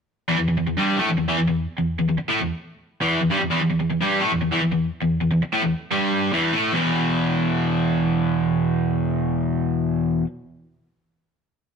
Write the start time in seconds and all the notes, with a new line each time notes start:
0.28 E2 E3
0.38 E2
0.48 E2
0.58 E2
0.67 E2
0.77 G2 G3
0.97 A2 A3
1.08 E2
1.18 E2
1.28 E2 E3
1.38 E2
1.48 E2
1.78 E2
1.99 E2
2.09 E2
2.18 muted overdriven electric guitar stroke
2.29 A2 A3
2.39 E2
3.01 E2 E3
3.21 E2
3.30 G2 G3
3.39 E2
3.50 E2 E3
3.61 E2
3.70 E2
3.80 E2
3.90 E2
4.01 G2 G3
4.20 A2 A3
4.31 E2
4.42 E2
4.52 E2 E3
4.62 E2
4.72 E2
5.02 E2
5.21 E2
5.31 E2
5.43 muted overdriven electric guitar stroke
5.53 A2 A3
5.62 E2
5.91 G2 G3
6.32 E2 E3
6.52 A2 A3
6.72 E2 B2
6.76 E3